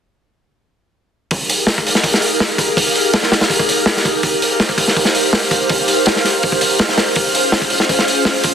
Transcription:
1.30 8.54 F5 medium
1.30 8.54 F6 medium
1.30 kick loud
1.30 open hi-hat medium
1.49 open hi-hat medium
1.67 snare loud
1.67 open hi-hat medium
1.78 kick medium
1.86 2.75 D#4 medium
1.86 2.75 G4 medium
1.86 2.75 G#4 medium
1.86 2.75 A#4 medium
1.86 open hi-hat medium
1.95 snare soft
2.04 kick medium
2.04 open hi-hat medium
2.14 snare soft
2.22 open hi-hat medium
2.40 snare loud
2.40 open hi-hat medium
2.58 kick medium
2.58 open hi-hat medium
2.77 kick loud
2.77 open hi-hat medium
2.95 open hi-hat medium
3.13 snare loud
3.13 open hi-hat medium
3.23 snare medium
3.32 4.21 D#4 medium
3.32 4.21 G4 medium
3.32 4.22 G#4 medium
3.32 4.21 A#4 medium
3.32 snare loud
3.32 open hi-hat medium
3.41 snare medium
3.41 open hi-hat medium
3.50 kick loud
3.50 open hi-hat medium
3.59 kick loud
3.69 open hi-hat medium
3.86 snare loud
3.86 open hi-hat medium
3.97 snare soft
4.05 kick medium
4.05 open hi-hat medium
4.23 kick loud
4.23 open hi-hat medium
4.42 open hi-hat medium
4.60 snare loud
4.60 open hi-hat medium
4.69 kick medium
4.78 5.68 D#4 medium
4.78 5.68 G4 medium
4.78 5.68 A#4 medium
4.78 5.68 C5 loud
4.78 kick medium
4.78 open hi-hat medium
4.88 snare soft
4.97 kick loud
4.97 open hi-hat medium
5.05 snare soft
5.15 open hi-hat medium
5.33 snare loud
5.33 open hi-hat medium
5.51 kick medium
5.51 open hi-hat medium
5.69 kick loud
5.69 open hi-hat medium
5.88 open hi-hat medium
6.06 snare loud
6.06 open hi-hat medium
6.16 snare soft
6.24 6.87 D#4 medium
6.24 6.87 G4 medium
6.24 6.87 A#4 medium
6.24 6.87 C5 medium
6.24 snare soft
6.24 open hi-hat medium
6.43 kick loud
6.43 open hi-hat medium
6.52 kick medium
6.61 open hi-hat medium
6.79 snare loud
6.79 open hi-hat medium
6.89 snare soft
6.98 snare loud
6.98 open hi-hat medium
7.15 kick loud
7.15 open hi-hat medium
7.34 open hi-hat medium
7.52 snare loud
7.52 open hi-hat medium
7.62 kick medium
7.70 8.54 C#4 medium
7.70 8.54 F4 medium
7.70 8.54 G#4 medium
7.70 8.54 C5 medium
7.70 open hi-hat medium
7.80 snare medium
7.89 kick loud
7.89 open hi-hat medium
7.99 snare soft
8.08 open hi-hat medium
8.25 snare loud
8.25 open hi-hat medium
8.43 kick medium
8.43 open hi-hat medium

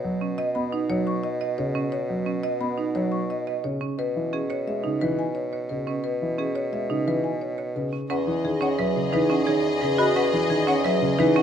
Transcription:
0.00 3.88 B2 medium
0.04 0.27 F#3 medium
0.21 0.44 C#4 soft
0.38 0.61 D#5 medium
0.55 0.78 B3 medium
0.55 0.78 B5 medium
0.72 0.95 D#4 medium
0.89 1.12 F#3 medium
0.89 1.12 C#5 medium
1.07 1.30 C#6 medium
1.24 1.47 D#5 medium
1.41 1.64 D#5 medium
1.58 1.81 C#3 medium
1.58 1.81 C#5 medium
1.75 1.98 C#4 medium
1.92 2.15 C#5 medium
2.10 2.32 F#3 medium
2.26 2.49 C#4 medium
2.43 2.66 D#5 medium
2.43 2.67 D#5 medium
2.61 2.84 B3 medium
2.61 2.84 B5 medium
2.78 3.01 D#4 soft
2.95 3.18 F#3 medium
2.95 3.18 C#5 medium
3.12 3.35 C#6 medium
3.30 3.53 D#5 medium
3.47 3.70 D#5 medium
3.64 3.87 C#3 medium
3.64 3.87 C#5 medium
3.81 4.04 C#4 medium
3.98 7.99 B2 soft
3.98 4.21 B4 medium
4.16 4.38 E3 medium
4.33 4.55 C#4 medium
4.33 4.55 G#4 medium
4.50 4.72 C#5 medium
4.50 4.73 C#5 medium
4.67 4.90 G#3 medium
4.67 4.90 E5 medium
4.84 5.07 C#3 soft
4.84 5.07 D#4 medium
5.01 5.24 E3 medium
5.01 5.24 B4 medium
5.19 5.41 G#5 soft
5.35 5.58 C#5 medium
5.53 5.75 C#5 soft
5.69 5.93 C#3 soft
5.69 5.92 B4 soft
5.87 6.10 C#4 medium
6.04 6.27 B4 medium
6.22 6.44 E3 soft
6.38 6.61 C#4 medium
6.38 6.61 G#4 medium
6.55 6.78 C#5 soft
6.55 6.78 C#5 medium
6.73 6.95 G#3 medium
6.73 6.95 E5 medium
6.90 7.12 C#3 medium
6.90 7.12 D#4 soft
7.07 7.30 E3 medium
7.07 7.30 B4 medium
7.24 7.47 G#5 soft
7.41 7.64 C#5 soft
7.58 7.81 C#5 medium
7.76 7.98 C#3 medium
7.76 7.98 B4 soft
7.93 8.09 C#4 soft
8.10 11.43 E2 medium
8.10 8.32 C#4 medium
8.10 11.43 G#4 medium
8.10 8.33 B4 medium
8.10 11.43 D#5 medium
8.10 8.16 F#5 medium
8.27 8.50 E3 medium
8.44 8.67 D#3 medium
8.44 8.67 G#4 medium
8.61 8.84 C#4 medium
8.61 8.84 C#5 medium
8.61 8.68 F#5 medium
8.79 9.01 F#3 medium
8.79 9.01 B4 medium
8.79 9.01 E5 medium
8.96 9.18 C#3 medium
9.13 9.35 E3 medium
9.13 9.35 D#4 medium
9.13 9.36 B4 medium
9.30 9.52 C#4 medium
9.30 9.53 F#5 medium
9.47 9.70 D#3 medium
9.47 9.69 G#4 medium
9.47 9.70 C#5 medium
9.81 10.04 C#3 medium
9.81 10.04 B4 medium
9.98 10.21 F#4 medium
9.98 10.21 D#5 medium
9.98 10.05 B5 medium
10.16 10.38 C#4 medium
10.16 10.38 B4 medium
10.16 10.22 F#5 medium
10.33 10.55 E3 medium
10.49 10.72 D#3 medium
10.49 10.73 G#4 medium
10.67 10.90 C#4 medium
10.67 10.90 C#5 medium
10.67 10.74 F#5 medium
10.84 11.07 F#3 medium
10.84 11.07 B4 medium
10.84 11.07 E5 medium
11.01 11.24 C#3 medium
11.19 11.41 E3 medium
11.19 11.41 D#4 medium
11.19 11.42 B4 medium
11.36 11.43 C#4 medium
11.36 11.43 F#5 medium

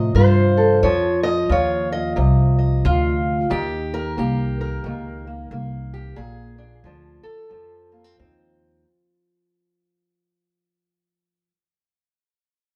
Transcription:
0.00 0.13 A2 medium
0.00 0.81 C3 medium
0.00 0.82 F3 medium
0.00 0.16 F4 medium
0.00 0.15 D#5 soft
0.15 0.80 G2 medium
0.15 0.80 F4 medium
0.15 0.83 C5 medium
0.57 0.80 A4 soft
0.83 1.48 F2 medium
0.83 3.51 F3 medium
0.83 1.23 C#5 medium
1.23 1.49 D#5 loud
1.49 2.14 D#2 medium
1.49 2.84 F4 medium
1.49 1.92 C#5 medium
1.92 2.15 D#5 medium
2.16 2.82 C2 medium
2.16 3.47 C3 medium
2.16 2.57 D#5 soft
2.58 3.48 D#5 soft
2.85 3.49 D2 medium
2.85 3.51 F4 loud
3.50 4.15 D#2 medium
3.50 4.84 D#3 medium
3.50 4.18 G4 loud
3.94 4.59 A#4 loud
4.17 4.82 C2 medium
4.17 4.84 A#3 medium
4.17 5.26 G4 medium
4.61 6.16 A#4 medium
4.84 5.49 C#2 medium
4.84 6.16 D#3 medium
4.84 5.26 A#3 soft
5.27 5.51 A#3 soft
5.51 6.16 C2 medium
5.51 6.58 A#3 medium
5.94 6.19 G4 medium
6.16 6.83 A#1 medium
6.16 7.48 A#2 medium
6.16 7.23 G#4 medium
6.58 6.85 D4 soft
6.84 7.22 D2 medium
6.84 7.48 F3 medium
6.84 7.49 D4 soft
7.23 8.17 A4 medium
7.49 8.16 F2 medium
7.49 11.51 F3 medium
7.49 7.91 C4 soft
7.92 8.04 A#3 soft
8.04 8.18 C4 soft
8.19 8.84 D#2 medium
8.19 8.83 C4 medium
8.19 8.83 D#4 soft

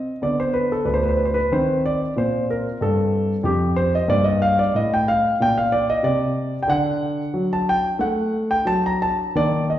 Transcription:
0.00 0.10 C4 soft
0.00 0.24 D#5 medium
0.22 0.75 D3 soft
0.22 1.48 B3 soft
0.22 0.40 D5 medium
0.40 0.56 C5 medium
0.53 0.71 B4 medium
0.72 0.89 A4 medium
0.85 1.38 D2 soft
0.85 0.95 B4 medium
0.94 1.03 C5 medium
1.03 1.12 B4 medium
1.09 1.18 C5 medium
1.17 1.26 B4 medium
1.25 1.34 C5 medium
1.34 1.53 B4 medium
1.52 2.04 D#3 medium
1.52 4.03 C4 soft
1.52 1.80 C5 medium
1.86 2.13 D5 medium
2.16 2.68 A#2 soft
2.16 2.45 C5 medium
2.50 2.77 A#4 medium
2.81 3.31 G2 medium
2.81 3.35 A4 medium
3.43 3.95 F2 medium
3.43 3.76 G4 medium
3.76 3.92 C5 medium
3.95 4.10 D#5 medium
4.08 4.61 G2 medium
4.08 6.64 A#3 soft
4.08 4.25 D5 medium
4.24 4.41 D#5 medium
4.42 4.58 F5 medium
4.59 4.75 D5 medium
4.74 5.26 A2 medium
4.74 4.92 D#5 medium
4.94 5.09 G5 medium
5.08 5.35 F5 medium
5.40 5.91 A#2 medium
5.40 5.57 G5 medium
5.58 5.72 F5 medium
5.72 5.88 D5 medium
5.90 6.05 D#5 medium
6.03 6.55 C3 medium
6.03 6.53 D5 medium
6.63 6.69 G5 medium
6.67 7.21 D3 medium
6.67 9.27 D4 soft
6.67 7.51 F#5 medium
7.34 7.87 F#3 medium
7.53 7.68 A5 medium
7.69 7.97 G5 medium
7.99 8.52 A3 medium
7.99 8.50 F#5 medium
8.51 8.66 G5 medium
8.65 9.19 F#3 medium
8.65 8.83 A5 medium
8.86 9.01 A#5 medium
9.02 9.34 A5 medium
9.35 9.79 D#3 medium
9.35 9.79 A#3 soft
9.35 9.64 D5 medium
9.70 9.79 D#5 medium

